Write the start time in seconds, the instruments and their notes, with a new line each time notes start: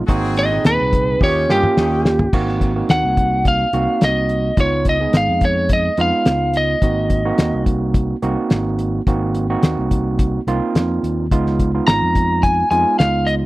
0.06 fingered electric bass G#1, tine electric piano A#3 C4 D#4 F#4, horn section C4 F#4 G#4, kick, closed hi-hat
0.24 snare
0.36 lead electric guitar D#5, closed hi-hat
0.52 tine electric piano A#2 C4 D#4 G#4
0.65 fingered electric bass D#2, lead electric guitar B4, snare, closed hi-hat
0.80 fingered electric bass C2
0.93 kick, closed hi-hat
1.21 fingered electric bass D#2, tine electric piano A#3 C#4 F4 G4, horn section C#4 D#4 G4, lead electric guitar C#5, kick
1.48 fingered electric bass G2, tine electric piano A#3 C#4 F4 G4, horn section C#4 D#4 G4, lead electric guitar G4, snare
1.63 mid tom
1.77 fingered electric bass D#2, horn section C#4 D#4 G4, snare
2.05 snare
2.19 floor tom
2.33 fingered electric bass G#1, tine electric piano A#3 C4 D#4 F#4, kick, crash
2.49 snare
2.61 kick, closed hi-hat
2.76 tine electric piano A#3 C4 D#4 F#4
2.89 fingered electric bass D#2, lead electric guitar F#5, snare, closed hi-hat
3.04 fingered electric bass C2
3.17 kick, closed hi-hat
3.45 lead electric guitar F5, kick, closed hi-hat
3.73 fingered electric bass C2, tine electric piano A#3 C4 D#4 F#4, closed hi-hat
4.01 fingered electric bass C2, lead electric guitar D#5, snare, closed hi-hat
4.29 closed hi-hat
4.57 fingered electric bass C#2, tine electric piano G#3 B3 D#4 F4, lead electric guitar C#5, kick, closed hi-hat
4.85 kick, closed hi-hat
4.89 lead electric guitar D#5
5.00 tine electric piano G#3 B3 D#4 G#4
5.13 fingered electric bass G#1, lead electric guitar F5, snare, closed hi-hat
5.28 fingered electric bass F2
5.41 kick, closed hi-hat
5.45 lead electric guitar C#5
5.69 kick, closed hi-hat
5.73 lead electric guitar D#5
5.97 fingered electric bass F2, tine electric piano G#3 B3 D#4 F4, lead electric guitar F5, closed hi-hat
6.25 fingered electric bass C#2, snare, closed hi-hat
6.54 lead electric guitar D#5, closed hi-hat
6.82 fingered electric bass G#1, tine electric piano A#3 C4 D#4 F#4, kick, closed hi-hat
7.10 kick, closed hi-hat
7.25 tine electric piano A#3 C4 D#4 F#4
7.38 fingered electric bass D#2, snare, closed hi-hat
7.53 fingered electric bass C2
7.66 kick, closed hi-hat
7.94 kick, closed hi-hat
8.22 fingered electric bass C2, tine electric piano A#3 C4 D#4 F#4, closed hi-hat
8.50 fingered electric bass G#1, snare, closed hi-hat
8.79 closed hi-hat
9.07 fingered electric bass G#1, tine electric piano A#3 C4 D#4 F#4, kick, closed hi-hat
9.35 closed hi-hat
9.50 tine electric piano A#3 C4 D#4 F#4
9.63 fingered electric bass D#2, snare, closed hi-hat
9.78 fingered electric bass C2
9.91 kick, closed hi-hat
10.19 kick, closed hi-hat
10.47 fingered electric bass C2, tine electric piano A#3 C4 D#4 F4, closed hi-hat
10.75 fingered electric bass F2, snare, closed hi-hat
11.03 fingered electric bass D#2, closed hi-hat
11.31 fingered electric bass C#2, tine electric piano G#3 B3 D#4 F4, kick, closed hi-hat
11.47 snare
11.59 kick, closed hi-hat
11.74 tine electric piano G#3 B3 D#4 F4
11.87 fingered electric bass G#1, lead electric guitar A#5, snare, closed hi-hat
12.02 fingered electric bass F2
12.15 kick, closed hi-hat
12.43 lead electric guitar G#5, kick, closed hi-hat
12.71 fingered electric bass F2, tine electric piano G#3 B3 D#4 F4, lead electric guitar G#5, closed hi-hat
12.99 fingered electric bass C#2, lead electric guitar F5, snare, closed hi-hat
13.27 lead electric guitar D#5, closed hi-hat